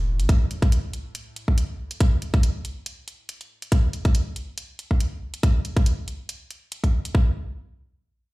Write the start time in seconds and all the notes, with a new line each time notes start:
Already playing: E1 A2
0.19 G1, closed hi-hat
0.29 kick, closed hi-hat
0.51 closed hi-hat
0.62 kick, closed hi-hat
0.72 closed hi-hat
0.93 closed hi-hat
1.15 closed hi-hat
1.36 closed hi-hat
1.48 kick
1.58 closed hi-hat
1.91 closed hi-hat
2.00 kick, closed hi-hat
2.22 closed hi-hat
2.34 kick, closed hi-hat
2.43 closed hi-hat
2.65 closed hi-hat
2.86 closed hi-hat
3.08 closed hi-hat
3.29 closed hi-hat
3.41 closed hi-hat
3.62 closed hi-hat
3.72 kick, closed hi-hat
3.93 closed hi-hat
4.05 kick, closed hi-hat
4.15 closed hi-hat
4.36 closed hi-hat
4.58 closed hi-hat
4.79 closed hi-hat
4.91 kick
5.00 closed hi-hat
5.34 closed hi-hat
5.43 kick, closed hi-hat
5.65 closed hi-hat
5.77 kick, closed hi-hat
5.86 closed hi-hat
6.08 closed hi-hat
6.29 closed hi-hat
6.51 closed hi-hat
6.72 closed hi-hat
6.84 kick, closed hi-hat
7.05 closed hi-hat
7.15 kick